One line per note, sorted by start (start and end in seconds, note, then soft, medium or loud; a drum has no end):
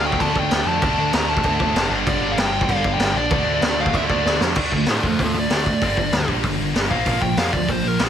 0.00 0.16 D2 medium
0.00 0.35 D3 medium
0.00 0.82 F3 medium
0.00 0.36 A3 loud
0.00 0.35 D4 loud
0.00 0.84 D4 medium
0.05 0.80 D3 medium
0.05 0.82 A3 medium
0.05 0.20 G5 medium
0.12 kick medium
0.20 0.34 D2 medium
0.20 0.36 A5 loud
0.20 kick loud
0.20 crash medium
0.35 0.49 D2 medium
0.35 0.49 D3 medium
0.35 0.51 A3 medium
0.35 0.54 D4 medium
0.35 0.67 G5 loud
0.35 kick medium
0.50 0.65 D2 medium
0.50 0.80 D3 medium
0.50 0.82 A3 medium
0.50 0.84 D4 medium
0.50 snare loud
0.50 crash medium
0.66 0.80 F2 medium
0.66 0.82 A5 loud
0.81 0.96 D2 loud
0.81 1.59 D3 medium
0.81 1.91 F3 loud
0.81 1.60 A3 loud
0.81 1.59 D4 loud
0.81 1.14 A5 loud
0.81 kick loud
0.81 crash medium
0.97 1.11 D2 medium
1.13 1.40 D2 loud
1.13 1.29 A#5 loud
1.13 snare loud
1.13 crash medium
1.29 1.90 D3 medium
1.29 1.92 A3 medium
1.29 3.34 D4 medium
1.29 1.92 A5 loud
1.37 kick medium
1.43 1.58 D2 medium
1.43 kick loud
1.43 crash medium
1.59 1.74 D2 medium
1.59 1.73 D3 medium
1.59 1.75 A3 medium
1.59 1.78 D4 medium
1.59 kick medium
1.74 1.89 F1 medium
1.74 1.90 D3 medium
1.74 1.91 A3 medium
1.74 snare loud
1.74 crash medium
1.78 3.35 D4 loud
1.90 2.04 G1 loud
1.90 2.68 G2 medium
1.90 2.70 D3 loud
1.94 2.70 G3 loud
1.94 3.16 A#3 loud
1.94 3.34 D4 loud
2.06 2.20 G1 loud
2.06 2.32 D5 loud
2.06 kick loud
2.06 crash medium
2.21 2.35 G1 medium
2.32 2.35 F5 loud
2.37 2.65 G1 loud
2.37 3.15 G2 medium
2.37 3.16 D3 medium
2.37 3.16 G3 medium
2.37 2.63 G5 loud
2.37 snare loud
2.37 crash medium
2.61 2.94 F5 loud
2.61 kick medium
2.68 2.82 G1 loud
2.68 2.84 G2 medium
2.68 2.85 D3 medium
2.68 kick loud
2.68 crash medium
2.73 2.83 G3 medium
2.84 2.97 G1 medium
2.84 3.17 G2 medium
2.84 3.16 D3 medium
2.84 3.15 G3 medium
2.84 kick medium
2.94 3.13 G1 medium
2.94 3.15 G5 loud
3.00 snare loud
3.00 crash medium
3.14 3.29 A#1 loud
3.14 3.81 D5 medium
3.30 3.45 D2 medium
3.30 4.08 D3 loud
3.30 4.56 F3 loud
3.30 4.10 A3 loud
3.30 kick loud
3.30 crash medium
3.35 4.08 D4 loud
3.45 3.60 D2 medium
3.61 3.89 D2 loud
3.61 snare loud
3.61 crash medium
3.78 4.54 D3 medium
3.78 4.54 A3 medium
3.78 4.55 D4 medium
3.78 3.94 F5 medium
3.86 kick medium
3.93 4.07 D2 loud
3.93 4.01 E5 medium
3.93 kick loud
3.93 crash medium
4.09 4.23 D2 medium
4.09 4.25 A3 medium
4.09 4.24 D4 medium
4.09 4.39 D5 medium
4.09 kick medium
4.13 4.24 D3 medium
4.25 4.39 D2 medium
4.25 4.55 D3 medium
4.25 4.56 A3 medium
4.25 4.57 D4 medium
4.25 snare medium
4.41 4.54 F2 medium
4.41 snare loud
4.55 4.69 D2 medium
4.55 4.71 D3 medium
4.55 5.81 F3 medium
4.55 4.71 A3 loud
4.55 4.72 D4 loud
4.55 kick loud
4.55 crash loud
4.72 4.84 D2 medium
4.72 4.86 D3 medium
4.72 4.86 A3 medium
4.72 kick medium
4.86 5.00 A2 medium
4.86 5.02 D3 loud
4.86 5.03 A3 loud
4.86 5.03 D4 loud
4.86 snare loud
4.86 open hi-hat medium
4.90 5.05 F4 medium
4.90 5.05 D5 medium
5.03 5.16 F2 medium
5.03 5.17 D3 medium
5.03 5.18 A3 medium
5.03 5.20 A4 medium
5.03 5.20 C5 medium
5.03 kick medium
5.19 5.31 D2 medium
5.19 5.33 D3 medium
5.19 5.34 A3 medium
5.19 kick loud
5.19 open hi-hat medium
5.24 5.36 F4 medium
5.24 5.37 A4 medium
5.33 5.46 D2 medium
5.33 5.49 D3 medium
5.33 5.49 A3 medium
5.40 6.28 D5 medium
5.49 5.74 D2 medium
5.49 5.65 D3 medium
5.49 5.65 A3 medium
5.49 5.66 D4 loud
5.49 snare loud
5.49 open hi-hat medium
5.66 5.80 D3 medium
5.66 5.80 A3 medium
5.66 kick medium
5.81 5.94 G1 medium
5.81 5.96 G2 medium
5.81 5.96 D3 medium
5.81 5.97 G3 loud
5.81 6.91 A#3 medium
5.81 6.91 D4 loud
5.81 kick loud
5.81 open hi-hat medium
5.97 6.09 G1 medium
5.97 6.10 G2 medium
5.97 6.10 D3 medium
5.97 kick medium
6.11 6.24 D2 medium
6.11 6.26 G2 medium
6.11 6.26 D3 medium
6.11 snare loud
6.11 open hi-hat medium
6.28 6.41 A#1 medium
6.28 6.41 G2 medium
6.28 6.42 D3 medium
6.28 6.43 G3 loud
6.28 kick medium
6.42 6.56 G1 medium
6.42 6.57 G2 medium
6.42 6.58 D3 medium
6.42 kick medium
6.42 open hi-hat medium
6.59 6.72 G1 medium
6.59 6.72 G2 medium
6.59 6.73 D3 medium
6.74 6.87 G1 medium
6.74 6.89 G2 medium
6.74 6.89 D3 medium
6.74 6.90 G3 loud
6.74 snare loud
6.74 open hi-hat medium
6.90 7.03 A#1 medium
6.90 7.04 A#2 medium
6.90 8.09 D3 medium
6.90 7.05 F3 loud
6.90 7.05 A#3 medium
6.90 7.21 F5 loud
6.90 kick medium
6.94 8.09 D4 medium
7.05 7.18 A#1 medium
7.05 7.21 A#2 medium
7.05 7.21 F3 medium
7.05 7.21 A#3 medium
7.05 kick loud
7.05 open hi-hat medium
7.21 7.34 A#1 medium
7.21 7.36 A#2 medium
7.21 7.36 F3 medium
7.21 7.38 G5 medium
7.21 kick medium
7.37 7.50 F2 loud
7.37 7.52 A#2 medium
7.37 7.53 F3 medium
7.37 7.53 A#3 loud
7.37 7.53 F5 medium
7.37 snare loud
7.37 open hi-hat medium
7.53 7.65 D2 medium
7.53 7.67 A#2 medium
7.53 7.67 F3 medium
7.53 7.71 D5 medium
7.53 kick medium
7.69 7.81 A#1 medium
7.69 7.83 A#2 medium
7.69 7.83 F3 medium
7.69 7.88 C5 medium
7.69 kick medium
7.69 open hi-hat medium
7.83 7.96 A#1 medium
7.83 7.98 A#2 medium
7.83 7.98 F3 medium
7.88 8.01 A#4 loud
7.99 8.09 A#1 medium
7.99 8.09 A#2 medium
7.99 8.09 F3 loud
7.99 8.09 A#3 loud
7.99 snare loud
7.99 open hi-hat medium